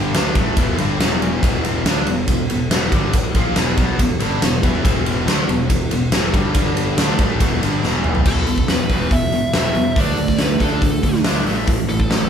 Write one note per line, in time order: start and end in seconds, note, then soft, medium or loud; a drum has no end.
0.00 0.11 G1 medium
0.00 0.13 G2 medium
0.00 0.13 D3 medium
0.00 0.14 G3 loud
0.14 0.33 D2 medium
0.14 0.35 D3 medium
0.14 0.35 A3 medium
0.14 0.35 D4 medium
0.14 snare loud
0.14 ride medium
0.35 0.55 A1 medium
0.35 0.56 A2 medium
0.35 0.56 E3 medium
0.35 0.57 A3 medium
0.35 kick loud
0.35 ride medium
0.57 0.77 E1 medium
0.57 0.77 E2 medium
0.57 0.78 B2 medium
0.57 0.78 E3 medium
0.57 kick loud
0.57 ride medium
0.77 0.98 G1 medium
0.77 0.99 G2 medium
0.77 0.99 D3 medium
0.77 0.99 G3 medium
0.77 ride medium
0.98 1.39 E1 medium
0.98 1.42 E2 medium
0.98 1.42 B2 medium
0.98 1.42 E3 loud
0.98 snare loud
0.98 ride medium
1.22 ride medium
1.43 1.82 E1 medium
1.43 1.85 E2 medium
1.43 1.85 B2 medium
1.43 1.85 E3 loud
1.43 kick loud
1.43 ride medium
1.64 ride medium
1.85 2.05 D2 medium
1.85 2.06 D3 medium
1.85 2.07 A3 medium
1.85 2.07 D4 medium
1.85 snare medium
1.85 ride medium
2.05 2.26 E1 medium
2.05 2.24 E2 medium
2.05 2.24 B2 medium
2.05 ride medium
2.28 2.48 E1 medium
2.28 2.45 E2 medium
2.28 2.45 B2 medium
2.28 kick medium
2.28 ride medium
2.49 2.69 E1 medium
2.49 2.67 E2 medium
2.49 2.67 B2 medium
2.49 ride medium
2.69 2.90 E1 medium
2.69 2.91 E2 medium
2.69 2.92 B2 medium
2.69 2.92 E3 loud
2.69 snare loud
2.69 ride medium
2.91 3.12 G1 medium
2.91 3.13 G2 medium
2.91 3.13 D3 loud
2.91 3.13 G3 loud
2.91 kick medium
2.91 ride medium
3.13 muted picked electric bass stroke soft
3.13 muted distorted electric guitar stroke medium
3.13 kick loud
3.13 ride loud
3.34 3.54 A#1 medium
3.34 3.56 A#2 medium
3.34 3.56 F3 medium
3.34 3.56 A#3 medium
3.34 kick medium
3.34 ride medium
3.56 3.76 E1 medium
3.56 3.77 E2 medium
3.56 3.76 B2 medium
3.56 3.77 E3 loud
3.56 snare loud
3.56 ride medium
3.77 3.97 B1 medium
3.77 3.98 B2 medium
3.77 3.99 F#3 loud
3.77 3.99 B3 loud
3.77 kick medium
3.77 ride medium
3.99 4.19 E1 medium
3.99 4.16 E2 medium
3.99 4.16 B2 medium
3.99 kick medium
3.99 ride medium
4.19 4.40 G1 medium
4.19 4.41 G2 medium
4.19 4.41 D3 medium
4.19 4.41 G3 loud
4.19 ride medium
4.41 4.61 E1 medium
4.41 4.59 E2 medium
4.41 4.59 B2 medium
4.41 snare loud
4.41 ride medium
4.63 4.83 E2 loud
4.63 4.84 E3 medium
4.63 4.84 B3 medium
4.63 4.84 E4 loud
4.63 kick medium
4.63 ride medium
4.84 5.24 E1 medium
4.84 5.26 E2 medium
4.84 5.26 B2 medium
4.84 5.27 E3 loud
4.84 kick loud
4.84 ride medium
5.06 ride medium
5.26 5.46 D2 medium
5.26 5.47 D3 medium
5.26 5.48 A3 loud
5.26 5.48 D4 loud
5.26 snare loud
5.26 ride medium
5.49 5.68 E1 medium
5.49 5.66 E2 medium
5.49 5.66 B2 medium
5.49 ride medium
5.69 5.89 E1 medium
5.69 5.87 E2 medium
5.69 5.87 B2 medium
5.69 kick medium
5.69 ride medium
5.91 6.11 E1 medium
5.91 6.08 E2 medium
5.91 6.08 B2 medium
5.91 ride medium
6.12 6.32 E1 medium
6.12 6.32 E2 medium
6.12 6.33 B2 medium
6.12 6.33 E3 medium
6.12 snare loud
6.12 ride medium
6.33 6.53 G1 loud
6.33 6.53 G2 loud
6.33 6.54 D3 loud
6.33 6.54 G3 loud
6.33 kick medium
6.33 ride medium
6.54 6.95 G1 medium
6.54 6.97 G2 medium
6.54 6.96 D3 medium
6.54 6.97 G3 loud
6.54 kick loud
6.54 ride medium
6.77 ride medium
6.97 7.17 D2 medium
6.97 7.18 D3 medium
6.97 7.18 A3 loud
6.97 7.19 D4 loud
6.97 snare loud
6.97 ride medium
7.19 7.39 A1 medium
7.19 7.40 A2 medium
7.19 7.40 E3 medium
7.19 7.40 A3 medium
7.19 kick loud
7.19 ride medium
7.40 7.60 E1 medium
7.40 7.60 E2 medium
7.40 7.61 B2 medium
7.40 7.61 E3 medium
7.40 kick medium
7.40 ride medium
7.61 7.82 G1 medium
7.61 7.82 G2 medium
7.61 7.82 D3 medium
7.61 7.82 G3 medium
7.61 ride medium
7.83 8.23 E1 medium
7.83 8.24 E2 medium
7.83 8.25 B2 medium
7.83 8.25 E3 loud
7.83 snare medium
8.04 mid tom medium
8.15 floor tom medium
8.25 8.44 E1 medium
8.25 8.45 E2 medium
8.25 8.46 B2 medium
8.25 8.46 E3 medium
8.25 8.66 A4 medium
8.25 kick medium
8.25 crash medium
8.46 8.65 E1 medium
8.46 8.66 E2 medium
8.46 8.66 B2 medium
8.46 open hi-hat soft
8.58 kick medium
8.68 8.86 E1 medium
8.68 8.88 E2 medium
8.68 8.88 B2 medium
8.68 9.13 B4 medium
8.68 snare medium
8.68 open hi-hat medium
8.89 9.08 E1 medium
8.89 9.10 E2 medium
8.89 9.11 B2 medium
8.89 9.11 E3 medium
8.89 kick medium
8.89 open hi-hat soft
9.11 9.29 E1 medium
9.11 9.31 E2 medium
9.11 9.31 B2 medium
9.11 9.56 E5 medium
9.11 kick loud
9.11 open hi-hat medium
9.32 9.50 E1 medium
9.32 9.52 E2 medium
9.32 9.52 B2 medium
9.32 open hi-hat soft
9.53 9.72 E1 medium
9.53 9.74 E2 medium
9.53 9.74 B2 medium
9.53 9.74 E3 medium
9.53 snare loud
9.53 open hi-hat medium
9.58 10.00 E5 medium
9.74 9.94 E2 medium
9.74 9.95 B2 medium
9.74 open hi-hat soft
9.96 10.15 D2 medium
9.96 10.16 D3 medium
9.96 10.17 A3 medium
9.96 10.17 D4 loud
9.96 kick loud
9.96 open hi-hat medium
10.00 10.41 D5 medium
10.17 10.36 D2 medium
10.17 10.37 D3 medium
10.17 10.37 A3 medium
10.17 open hi-hat soft
10.28 kick medium
10.28 snare soft
10.38 10.57 D2 medium
10.38 10.58 D3 medium
10.38 10.58 A3 medium
10.38 10.61 B4 medium
10.38 snare medium
10.38 open hi-hat medium
10.60 10.79 D2 medium
10.60 10.80 D3 medium
10.60 10.80 A3 medium
10.60 10.81 D4 medium
10.60 11.21 A4 medium
10.60 kick medium
10.60 open hi-hat soft
10.82 11.00 D2 medium
10.82 11.01 D3 medium
10.82 11.01 A3 medium
10.82 kick medium
10.82 open hi-hat medium
11.03 11.21 D2 medium
11.03 11.23 D3 medium
11.03 11.23 A3 medium
11.03 kick medium
11.03 open hi-hat medium
11.14 snare soft
11.24 11.43 D2 medium
11.24 11.45 D3 medium
11.24 11.45 A3 medium
11.24 11.46 D4 loud
11.24 snare loud
11.24 open hi-hat medium
11.45 11.64 A1 medium
11.45 11.66 A2 medium
11.45 11.66 E3 medium
11.45 11.67 A3 loud
11.45 open hi-hat soft
11.67 11.86 A1 medium
11.67 11.87 A2 medium
11.67 11.87 E3 medium
11.67 kick loud
11.67 open hi-hat medium
11.88 12.07 A1 medium
11.88 12.08 A2 medium
11.88 12.09 E3 medium
11.88 12.29 A4 medium
11.88 open hi-hat soft
12.00 kick medium
12.10 12.28 A1 medium
12.10 12.29 A2 medium
12.10 12.29 E3 medium
12.10 snare medium
12.10 open hi-hat medium